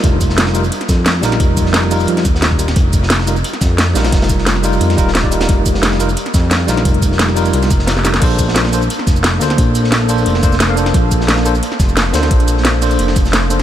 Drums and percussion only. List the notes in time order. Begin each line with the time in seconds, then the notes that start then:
0.03 kick, closed hi-hat
0.21 kick, closed hi-hat, shaker
0.29 snare
0.37 snare, closed hi-hat
0.47 snare
0.54 closed hi-hat, shaker
0.64 closed hi-hat, shaker
0.72 closed hi-hat
0.81 snare, closed hi-hat
0.88 kick, snare, closed hi-hat, shaker
1.05 snare, closed hi-hat
1.22 snare, closed hi-hat, shaker
1.32 snare, closed hi-hat
1.40 kick, closed hi-hat
1.57 kick, closed hi-hat, shaker
1.65 snare
1.73 snare, closed hi-hat
1.83 snare
1.91 closed hi-hat, open hi-hat, shaker
2.00 shaker
2.07 closed hi-hat
2.17 snare, closed hi-hat
2.25 kick, closed hi-hat, shaker
2.35 snare
2.42 snare, closed hi-hat
2.51 kick
2.59 closed hi-hat, shaker
2.68 snare, closed hi-hat
2.76 kick, closed hi-hat
2.93 kick, closed hi-hat, shaker
3.03 snare
3.10 snare, closed hi-hat
3.19 snare
3.27 closed hi-hat, shaker
3.36 closed hi-hat, shaker
3.44 closed hi-hat
3.53 snare, closed hi-hat
3.61 kick, snare, closed hi-hat, shaker
3.78 snare, closed hi-hat
3.95 snare, closed hi-hat, shaker
4.04 snare, closed hi-hat
4.12 kick, snare, closed hi-hat
4.22 snare, closed hi-hat
4.29 kick, closed hi-hat, shaker
4.38 snare
4.46 snare, closed hi-hat
4.56 snare
4.64 closed hi-hat, open hi-hat, shaker
4.73 shaker
4.81 closed hi-hat
4.90 snare, closed hi-hat
4.98 kick, closed hi-hat, shaker
5.08 snare
5.15 snare, closed hi-hat
5.24 kick
5.31 closed hi-hat, shaker
5.40 snare, closed hi-hat
5.49 kick, closed hi-hat
5.66 kick, closed hi-hat, shaker
5.74 snare
5.82 snare, closed hi-hat
5.92 snare
6.00 closed hi-hat, shaker
6.09 closed hi-hat, shaker
6.17 closed hi-hat
6.26 snare, closed hi-hat
6.34 kick, snare, closed hi-hat, shaker
6.50 snare, closed hi-hat
6.68 snare, closed hi-hat, shaker
6.77 snare, closed hi-hat
6.85 kick, closed hi-hat
6.94 closed hi-hat
7.02 kick, closed hi-hat, shaker
7.12 snare
7.19 snare, closed hi-hat
7.29 snare
7.36 closed hi-hat, open hi-hat, shaker
7.46 closed hi-hat, shaker
7.53 closed hi-hat
7.63 snare, closed hi-hat, shaker
7.70 kick, closed hi-hat, shaker
7.79 snare
7.87 snare, closed hi-hat
7.97 snare
8.05 snare, closed hi-hat, shaker
8.14 snare, closed hi-hat
8.21 kick, closed hi-hat, crash
8.39 kick, closed hi-hat, shaker
8.48 snare
8.55 snare, closed hi-hat
8.65 snare
8.73 closed hi-hat, shaker
8.81 closed hi-hat, shaker
8.90 closed hi-hat
8.99 snare
9.07 kick, snare, closed hi-hat, shaker
9.16 shaker
9.23 snare, closed hi-hat
9.41 snare, closed hi-hat, shaker
9.50 snare, closed hi-hat
9.58 kick, closed hi-hat
9.75 closed hi-hat, shaker
9.84 snare
9.92 snare, closed hi-hat
10.09 closed hi-hat, open hi-hat, shaker
10.18 shaker
10.26 closed hi-hat
10.35 snare
10.43 kick, closed hi-hat, shaker
10.52 snare, shaker
10.60 snare, closed hi-hat
10.77 closed hi-hat, shaker
10.86 snare, closed hi-hat
10.94 kick, closed hi-hat
11.11 kick, closed hi-hat, shaker
11.21 snare
11.28 snare, closed hi-hat
11.37 snare
11.46 closed hi-hat, shaker
11.54 closed hi-hat, shaker
11.63 closed hi-hat
11.72 snare
11.79 kick, snare, closed hi-hat, shaker
11.89 shaker
11.97 snare, closed hi-hat
12.13 snare, closed hi-hat, shaker
12.23 snare, closed hi-hat
12.31 kick, closed hi-hat
12.40 closed hi-hat
12.48 closed hi-hat, shaker
12.57 snare
12.65 snare, closed hi-hat
12.81 closed hi-hat, open hi-hat, shaker
12.91 closed hi-hat, shaker
12.99 closed hi-hat
13.08 snare
13.16 kick, closed hi-hat, shaker
13.25 snare, shaker
13.33 snare, closed hi-hat
13.50 closed hi-hat, shaker
13.59 snare, closed hi-hat